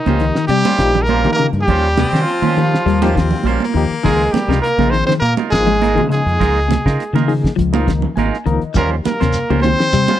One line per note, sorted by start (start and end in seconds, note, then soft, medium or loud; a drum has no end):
0.00 0.49 D#3 medium
0.00 0.47 D#4 medium
0.06 0.30 C#2 medium
0.06 0.18 C#3 medium
0.06 0.46 F3 medium
0.06 0.46 A#3 medium
0.06 0.25 C#4 soft
0.06 0.46 D#4 medium
0.06 0.24 F4 soft
0.06 0.46 G4 medium
0.06 0.24 C5 medium
0.06 snare soft
0.06 high conga medium
0.20 0.33 D#3 medium
0.20 closed hi-hat medium
0.35 0.47 D#3 medium
0.35 snare medium
0.47 0.62 C3 loud
0.47 1.09 G3 medium
0.47 0.73 G3 medium
0.47 1.04 G4 loud
0.47 closed hi-hat medium
0.47 high conga soft
0.64 0.83 C#4 soft
0.64 0.83 F4 soft
0.64 0.83 C5 soft
0.64 closed hi-hat soft
0.64 high conga loud
0.78 1.26 A#1 medium
0.78 1.04 F3 loud
0.78 1.04 A#3 medium
0.78 1.04 D#4 medium
0.78 1.04 G4 loud
0.78 kick medium
0.78 snare medium
0.78 closed hi-hat medium
0.95 muted clean electric guitar stroke medium
0.95 snare soft
0.95 low conga medium
1.02 1.32 A#4 loud
1.07 1.27 G3 medium
1.07 1.35 A#3 medium
1.07 1.28 C#4 medium
1.07 1.28 F4 medium
1.07 1.28 C5 medium
1.07 closed hi-hat medium
1.07 high conga medium
1.24 1.48 D#3 medium
1.24 1.36 D#3 medium
1.24 1.88 F3 medium
1.24 1.88 A#3 medium
1.24 1.89 D#4 medium
1.24 1.89 G4 medium
1.24 snare soft
1.24 high conga medium
1.32 1.50 A#3 medium
1.32 1.47 A#4 loud
1.37 1.62 C#3 medium
1.37 closed hi-hat medium
1.53 1.64 G2 medium
1.53 closed hi-hat soft
1.62 2.24 G4 loud
1.66 2.04 D#2 medium
1.66 2.27 G3 medium
1.66 1.87 G3 medium
1.66 1.87 C#4 medium
1.66 1.87 F4 medium
1.66 1.87 C5 medium
1.66 kick medium
1.66 closed hi-hat medium
1.66 high conga soft
1.66 low conga medium
1.97 2.21 C3 medium
1.97 2.61 C4 loud
1.97 snare medium
1.97 closed hi-hat medium
1.97 high conga loud
2.13 2.24 D#3 loud
2.13 2.31 C#4 soft
2.13 2.31 F4 soft
2.13 2.30 C5 medium
2.13 snare medium
2.22 3.74 F3 medium
2.22 3.72 F4 medium
2.27 closed hi-hat medium
2.27 high conga soft
2.42 2.77 D#3 medium
2.42 2.53 D#3 medium
2.42 2.60 C#4 medium
2.42 2.60 F4 soft
2.42 2.60 C5 medium
2.42 high conga medium
2.57 2.80 D#3 medium
2.57 2.81 F3 medium
2.57 2.87 G3 medium
2.57 2.81 A#3 medium
2.57 2.82 D#4 medium
2.57 2.81 G4 medium
2.57 closed hi-hat soft
2.57 high conga medium
2.74 snare medium
2.86 3.32 D#2 loud
2.86 3.09 G3 medium
2.86 3.01 A#3 medium
2.86 closed hi-hat medium
2.86 high conga soft
3.02 3.41 F3 medium
3.02 3.19 A#3 loud
3.02 3.41 A#3 medium
3.02 3.20 C#4 soft
3.02 3.41 D#4 medium
3.02 3.19 F4 medium
3.02 3.41 G4 loud
3.02 3.19 C5 medium
3.02 snare soft
3.02 closed hi-hat soft
3.02 high conga loud
3.15 3.38 D#3 medium
3.15 3.50 C4 loud
3.15 kick medium
3.15 snare medium
3.15 closed hi-hat soft
3.31 snare soft
3.31 low conga medium
3.44 3.57 A#1 loud
3.44 3.64 G3 medium
3.44 3.64 C#4 medium
3.44 3.64 F4 medium
3.44 3.64 C5 medium
3.44 closed hi-hat medium
3.44 high conga medium
3.48 3.62 A#3 loud
3.60 snare soft
3.60 high conga medium
3.64 4.77 A#3 loud
3.74 3.87 D#2 loud
3.74 3.97 D#3 medium
3.74 3.92 F3 medium
3.74 3.92 A#3 medium
3.74 3.92 D#4 medium
3.74 3.93 G4 loud
3.74 closed hi-hat medium
3.90 muted fingered electric bass stroke soft
3.90 closed hi-hat soft
4.04 4.28 C#2 loud
4.04 4.26 D#3 medium
4.04 4.45 F3 medium
4.04 4.23 G#3 medium
4.04 4.36 G#3 medium
4.04 4.46 A#3 medium
4.04 4.23 D#4 medium
4.04 4.45 D#4 medium
4.04 4.23 F4 medium
4.04 4.33 G#4 loud
4.04 4.46 G#4 medium
4.04 4.23 A#4 medium
4.04 kick loud
4.04 snare soft
4.04 closed hi-hat medium
4.04 high conga soft
4.04 low conga medium
4.32 4.62 G3 medium
4.32 4.61 G4 medium
4.32 muted fingered electric bass stroke soft
4.32 closed hi-hat medium
4.32 high conga medium
4.36 snare medium
4.48 4.60 C#2 medium
4.48 4.72 C3 medium
4.48 4.67 D#4 soft
4.48 4.67 F4 medium
4.48 4.67 A#4 medium
4.48 snare medium
4.48 closed hi-hat soft
4.62 4.93 A#3 medium
4.62 4.92 A#4 loud
4.62 closed hi-hat medium
4.62 high conga soft
4.78 5.02 A#1 medium
4.78 4.90 C#3 medium
4.78 5.18 F3 medium
4.78 5.18 A#3 medium
4.78 5.18 D#4 medium
4.78 4.97 D#4 soft
4.78 4.97 F4 medium
4.78 5.18 G#4 medium
4.78 4.96 A#4 medium
4.78 snare soft
4.78 high conga medium
4.90 5.05 D#3 medium
4.90 5.05 C4 medium
4.90 5.06 C5 loud
4.90 closed hi-hat medium
5.06 5.19 D#3 medium
5.06 5.13 C4 medium
5.06 5.13 C5 loud
5.06 low conga medium
5.10 snare medium
5.20 5.34 A#2 loud
5.20 5.35 A#3 medium
5.20 5.34 A#4 loud
5.20 muted clean electric guitar stroke loud
5.20 high conga soft
5.24 closed hi-hat medium
5.37 5.56 D#4 soft
5.37 5.55 F4 soft
5.37 5.55 A#4 medium
5.37 closed hi-hat soft
5.37 high conga loud
5.50 5.99 G#1 medium
5.50 5.76 F3 loud
5.50 6.06 G#3 loud
5.50 5.76 A#3 medium
5.50 5.76 D#4 medium
5.50 6.06 G#4 loud
5.50 5.76 G#4 loud
5.50 kick medium
5.50 snare medium
5.50 closed hi-hat medium
5.67 5.89 G#3 medium
5.67 low conga medium
5.81 6.00 G#3 medium
5.81 6.00 D#4 medium
5.81 6.00 F4 medium
5.81 6.00 A#4 medium
5.81 closed hi-hat medium
5.81 high conga medium
5.95 6.21 C#3 medium
5.95 6.06 D#3 medium
5.95 6.60 F3 medium
5.95 6.60 A#3 medium
5.95 6.60 D#4 medium
5.95 6.60 G#4 medium
5.95 high conga medium
6.09 6.32 C#3 medium
6.09 7.24 G#3 medium
6.09 7.25 G#4 loud
6.09 closed hi-hat medium
6.26 6.37 F2 medium
6.26 closed hi-hat soft
6.39 6.76 C#2 medium
6.39 6.58 G#3 medium
6.39 6.59 D#4 medium
6.39 6.59 F4 medium
6.39 6.59 A#4 medium
6.39 kick medium
6.39 snare soft
6.39 closed hi-hat medium
6.39 high conga soft
6.39 low conga medium
6.68 6.91 C3 medium
6.68 snare medium
6.68 closed hi-hat soft
6.68 high conga medium
6.86 6.96 C#3 loud
6.86 7.03 D#4 soft
6.86 7.03 F4 medium
6.86 7.03 A#4 medium
6.86 kick medium
6.86 snare medium
7.00 closed hi-hat medium
7.00 high conga soft
7.13 7.48 C#3 medium
7.13 7.25 D#3 medium
7.13 7.33 D#4 soft
7.13 7.32 F4 soft
7.13 7.32 A#4 medium
7.13 snare soft
7.13 high conga medium
7.28 7.51 D#3 medium
7.28 7.52 F3 medium
7.28 7.53 A#3 medium
7.28 7.53 D#4 medium
7.28 7.53 G#4 medium
7.28 open hi-hat medium
7.44 kick medium
7.44 snare medium
7.56 8.05 C#2 loud
7.56 7.79 F3 medium
7.56 kick medium
7.56 closed hi-hat medium
7.56 high conga soft
7.73 8.13 F3 loud
7.73 8.12 A#3 medium
7.73 8.12 D#4 medium
7.73 7.91 D#4 soft
7.73 7.91 F4 soft
7.73 8.13 A#4 medium
7.73 7.91 A#4 medium
7.73 closed hi-hat soft
7.73 high conga loud
7.87 8.10 D#3 medium
7.87 kick medium
7.87 snare medium
7.87 closed hi-hat soft
8.02 low conga medium
8.16 8.29 G#1 loud
8.16 8.35 G#3 medium
8.16 8.36 D#4 medium
8.16 8.36 F4 medium
8.16 8.36 A#4 medium
8.16 8.44 G#5 medium
8.16 closed hi-hat medium
8.16 high conga medium
8.34 snare soft
8.46 8.59 C#2 medium
8.46 8.69 D#3 medium
8.46 8.63 F3 medium
8.46 8.63 A#3 medium
8.46 8.63 D#4 medium
8.46 8.63 A#4 loud
8.46 8.74 D#5 medium
8.46 closed hi-hat medium
8.62 closed hi-hat soft
8.74 8.99 D#2 loud
8.74 9.16 F3 medium
8.74 8.94 G3 medium
8.74 9.16 A#3 medium
8.74 8.90 A#3 medium
8.74 8.94 C#4 medium
8.74 9.16 D#4 medium
8.74 8.95 F4 medium
8.74 9.16 G4 medium
8.74 8.90 A#4 medium
8.74 8.95 C5 medium
8.74 muted clean electric guitar stroke medium
8.74 kick medium
8.74 closed hi-hat medium
8.74 high conga soft
8.74 low conga medium
8.74 shekere medium
9.05 9.60 A#3 medium
9.05 9.61 A#4 medium
9.05 muted fingered electric bass stroke soft
9.05 snare medium
9.05 closed hi-hat medium
9.05 high conga medium
9.05 shekere soft
9.20 9.32 D#2 medium
9.20 9.43 C3 medium
9.20 9.38 C#4 soft
9.20 9.38 F4 soft
9.20 9.38 C5 medium
9.20 snare medium
9.20 closed hi-hat soft
9.33 closed hi-hat medium
9.33 high conga soft
9.33 shekere medium
9.50 9.73 C#2 medium
9.50 9.61 C#3 medium
9.50 9.89 F3 medium
9.50 9.89 A#3 medium
9.50 9.68 C#4 soft
9.50 9.89 D#4 medium
9.50 9.68 F4 soft
9.50 9.89 G4 medium
9.50 9.67 C5 medium
9.50 high conga medium
9.62 9.76 D#3 medium
9.62 10.20 C4 medium
9.62 10.20 C5 loud
9.62 closed hi-hat medium
9.62 high conga medium
9.62 shekere soft
9.80 9.91 D#3 medium
9.80 snare medium
9.93 10.06 C3 loud
9.93 10.16 G3 loud
9.93 closed hi-hat medium
9.93 high conga soft
9.93 shekere medium
10.08 10.20 C#4 soft
10.08 10.20 F4 soft
10.08 10.20 C5 soft
10.08 snare soft
10.08 closed hi-hat soft
10.08 high conga loud